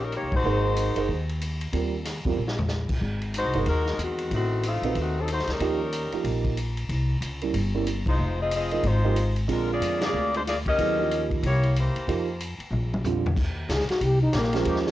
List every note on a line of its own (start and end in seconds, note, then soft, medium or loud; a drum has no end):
0.00 0.20 A#1 medium
0.00 0.14 G3 medium
0.00 0.14 C#4 medium
0.00 0.14 D#4 medium
0.00 0.14 A#4 medium
0.12 0.33 D#4 medium
0.12 0.33 G4 medium
0.12 0.33 C#5 medium
0.12 hi-hat pedal soft
0.12 ride medium
0.16 0.33 A#3 medium
0.22 0.32 C#2 medium
0.32 0.43 A#1 medium
0.32 1.26 F#4 medium
0.32 1.26 C5 medium
0.32 kick medium
0.32 ride medium
0.36 1.27 G#3 medium
0.36 1.27 D#4 medium
0.44 0.93 G#1 medium
0.44 0.93 A#3 medium
0.44 0.93 D#4 medium
0.44 0.93 G#4 medium
0.44 0.93 C5 medium
0.76 hi-hat pedal medium
0.76 ride medium
0.96 1.08 F#1 medium
0.96 1.08 A#3 medium
0.96 1.08 D#4 soft
0.96 1.08 G#4 soft
0.96 1.08 C5 medium
0.96 ride medium
1.09 1.70 D#2 medium
1.09 kick soft
1.29 ride soft
1.41 hi-hat pedal medium
1.41 ride medium
1.61 ride soft
1.73 2.21 D#2 medium
1.73 1.91 G3 medium
1.73 1.91 C4 soft
1.73 1.91 F4 soft
1.73 1.91 A#4 medium
1.73 kick soft
1.73 ride medium
2.05 snare soft
2.05 hi-hat pedal soft
2.05 ride medium
2.25 2.36 E2 medium
2.25 2.37 G3 medium
2.25 2.37 C4 soft
2.25 2.37 F4 medium
2.25 2.37 A#4 medium
2.25 kick soft
2.37 2.99 A#1 medium
2.48 snare medium
2.59 floor tom medium
2.68 snare medium
2.68 hi-hat pedal medium
2.89 kick medium
2.89 crash medium
3.01 3.42 G#1 medium
3.01 kick soft
3.22 ride soft
3.34 3.66 G#3 medium
3.34 3.66 D#4 medium
3.34 3.66 F#4 medium
3.34 3.66 C5 loud
3.34 hi-hat pedal medium
3.34 ride medium
3.44 3.54 C2 medium
3.53 3.66 G1 medium
3.53 3.66 A#3 medium
3.53 3.66 D#4 soft
3.53 3.66 G#4 soft
3.53 3.66 C5 medium
3.53 ride soft
3.66 3.97 D#2 medium
3.66 3.98 G#3 medium
3.66 3.98 D#4 medium
3.66 3.98 F#4 medium
3.66 3.98 A#4 medium
3.66 kick soft
3.66 ride medium
3.86 snare soft
3.98 4.28 E2 medium
3.98 4.33 G#3 medium
3.98 hi-hat pedal medium
3.98 ride medium
4.02 4.33 D#3 medium
4.02 4.33 C4 medium
4.02 4.33 F#4 medium
4.18 ride soft
4.31 4.79 A1 medium
4.31 4.63 D#3 medium
4.31 4.63 A3 medium
4.31 4.63 C4 medium
4.31 4.63 F#4 medium
4.31 kick soft
4.31 ride soft
4.63 4.95 A3 medium
4.63 4.95 C4 medium
4.63 4.96 F4 medium
4.63 hi-hat pedal medium
4.63 ride medium
4.67 4.96 D#4 medium
4.82 4.94 A#1 medium
4.82 4.95 C4 soft
4.82 4.95 D#4 soft
4.82 4.95 F#4 soft
4.82 4.95 B4 medium
4.82 ride soft
4.95 5.44 D#2 medium
4.95 kick soft
4.95 ride soft
5.00 5.18 D#3 medium
5.00 5.18 A3 medium
5.00 5.18 C4 medium
5.00 5.18 F#4 medium
5.20 5.31 F#3 medium
5.20 5.30 C4 medium
5.20 5.31 D#4 medium
5.20 5.31 A4 medium
5.28 hi-hat pedal soft
5.28 ride medium
5.32 5.49 A3 medium
5.32 5.49 D#4 medium
5.32 5.48 F#4 medium
5.32 5.49 C5 medium
5.39 snare soft
5.47 5.59 D2 medium
5.47 snare soft
5.47 ride soft
5.52 6.43 G3 medium
5.52 6.43 C#4 medium
5.52 6.43 D#4 medium
5.52 6.43 A#4 medium
5.59 6.08 D#2 medium
5.59 5.78 F3 medium
5.59 5.78 A#3 soft
5.59 5.79 D#4 medium
5.59 5.79 G4 medium
5.59 kick soft
5.59 ride medium
5.92 hi-hat pedal medium
5.92 ride medium
6.12 6.55 F3 soft
6.12 6.55 A#3 soft
6.12 6.55 D#4 soft
6.12 6.55 G4 medium
6.12 muted upright bass stroke soft
6.12 ride soft
6.24 6.86 A#1 medium
6.24 kick soft
6.24 ride medium
6.44 kick soft
6.44 ride soft
6.57 hi-hat pedal soft
6.57 ride medium
6.77 ride soft
6.89 7.19 C2 medium
6.89 kick soft
6.89 ride medium
7.21 7.51 C#2 medium
7.21 hi-hat pedal medium
7.21 ride medium
7.41 7.53 G3 soft
7.41 7.53 A#3 soft
7.41 7.53 C#4 soft
7.41 7.53 E4 medium
7.41 ride soft
7.54 8.02 G1 medium
7.54 kick soft
7.54 ride medium
7.74 7.85 G3 medium
7.74 7.86 A#3 medium
7.74 7.86 C#4 medium
7.74 7.86 E4 medium
7.87 hi-hat pedal medium
7.87 ride medium
8.06 8.18 C2 medium
8.06 8.37 G#3 medium
8.06 8.37 D#4 medium
8.06 8.37 F4 medium
8.06 8.37 C5 medium
8.06 kick medium
8.06 ride medium
8.19 8.80 F1 medium
8.41 8.52 C4 medium
8.41 8.52 F4 medium
8.41 8.52 G#4 medium
8.41 8.52 D#5 loud
8.51 8.83 C4 medium
8.51 8.83 D#5 medium
8.51 hi-hat pedal medium
8.51 ride medium
8.55 8.83 F4 medium
8.55 8.84 G#4 medium
8.71 8.83 F3 soft
8.71 8.83 A#3 soft
8.71 8.83 D#4 soft
8.71 8.83 G#4 soft
8.71 ride soft
8.83 9.45 G#1 medium
8.83 9.37 G#3 medium
8.83 9.37 D#4 medium
8.83 9.37 F4 medium
8.83 9.37 C5 medium
8.83 kick soft
8.83 ride medium
9.04 9.15 F3 medium
9.04 9.15 A#3 medium
9.04 9.15 D#4 medium
9.04 9.15 G4 medium
9.16 hi-hat pedal soft
9.16 ride medium
9.36 ride soft
9.48 9.78 A#1 medium
9.48 10.38 D3 medium
9.48 10.38 G#3 medium
9.48 9.68 G#3 medium
9.48 10.38 C4 soft
9.48 9.68 D4 medium
9.48 10.38 F4 medium
9.48 9.68 F4 medium
9.48 9.68 A#4 medium
9.48 kick soft
9.48 ride medium
9.72 10.02 A#3 medium
9.72 10.03 F4 medium
9.72 10.02 G#4 medium
9.72 10.02 D5 medium
9.80 10.11 F2 medium
9.80 hi-hat pedal medium
9.80 ride medium
10.01 10.32 A#3 medium
10.01 10.32 F4 medium
10.01 10.32 G#4 medium
10.01 10.32 D5 loud
10.01 snare medium
10.01 ride medium
10.13 10.75 D2 medium
10.34 10.40 G#3 medium
10.34 10.41 D4 medium
10.34 10.41 F4 medium
10.34 10.41 C5 medium
10.34 ride soft
10.47 10.56 A#3 medium
10.47 10.56 F4 medium
10.47 10.56 G#4 medium
10.47 10.56 D5 medium
10.47 snare soft
10.47 hi-hat pedal soft
10.47 ride medium
10.66 11.27 C#4 medium
10.66 11.27 G4 medium
10.66 11.27 A#4 medium
10.66 11.27 D#5 loud
10.66 kick medium
10.66 ride soft
10.78 11.39 D#2 medium
10.78 10.96 F#3 medium
10.78 10.96 B3 medium
10.78 10.96 E4 soft
10.78 10.97 G#4 medium
10.78 kick soft
10.78 ride medium
10.98 11.43 F3 soft
10.98 11.43 A#3 soft
10.98 11.43 D#4 soft
10.98 11.43 G4 medium
11.11 hi-hat pedal soft
11.11 ride medium
11.31 kick soft
11.31 ride soft
11.43 11.91 C2 medium
11.43 11.75 A#3 medium
11.43 11.75 E4 medium
11.43 11.74 G4 medium
11.43 11.75 C#5 medium
11.43 kick soft
11.43 ride medium
11.63 ride soft
11.76 12.38 A#3 medium
11.76 12.08 E4 medium
11.76 12.38 G4 medium
11.76 12.38 C5 medium
11.76 hi-hat pedal medium
11.76 ride medium
11.95 muted upright bass stroke soft
11.95 ride soft
12.08 12.56 F2 medium
12.08 12.25 F3 soft
12.08 12.26 A#3 soft
12.08 12.26 D#4 soft
12.08 12.26 G4 medium
12.08 kick soft
12.08 ride medium
12.40 hi-hat pedal medium
12.40 ride medium
12.58 muted upright bass stroke soft
12.58 ride soft
12.70 13.33 A#1 medium
12.70 mid tom soft
12.94 mid tom medium
13.04 13.23 D3 medium
13.04 13.23 G3 medium
13.04 13.23 C4 medium
13.04 13.23 F4 medium
13.04 floor tom medium
13.04 hi-hat pedal medium
13.26 floor tom medium
13.36 13.68 D#2 medium
13.36 kick medium
13.36 crash medium
13.69 13.87 C#2 medium
13.69 13.89 G#4 medium
13.69 kick soft
13.69 snare medium
13.69 hi-hat pedal medium
13.69 ride medium
13.80 snare soft
13.88 14.06 F#4 medium
13.88 muted upright bass stroke soft
13.88 snare soft
13.88 ride soft
14.00 14.32 C2 medium
14.00 14.22 G4 medium
14.00 kick soft
14.00 ride medium
14.22 14.39 D#4 medium
14.33 14.65 A#1 medium
14.33 14.66 D#3 medium
14.33 14.66 A#3 medium
14.33 14.66 C#4 medium
14.33 14.66 G4 medium
14.33 kick soft
14.33 snare medium
14.33 hi-hat pedal medium
14.33 ride medium
14.38 14.57 A#3 medium
14.43 snare soft
14.53 14.91 F3 medium
14.53 14.91 G#3 medium
14.53 14.91 C#4 medium
14.53 14.91 G4 medium
14.53 14.91 A#4 medium
14.53 snare soft
14.53 ride soft
14.65 14.91 D#2 medium
14.65 14.80 D#3 medium
14.65 14.80 A#3 medium
14.65 14.80 C#4 medium
14.65 14.80 G4 medium
14.65 kick soft
14.65 ride medium
14.76 snare soft
14.86 snare soft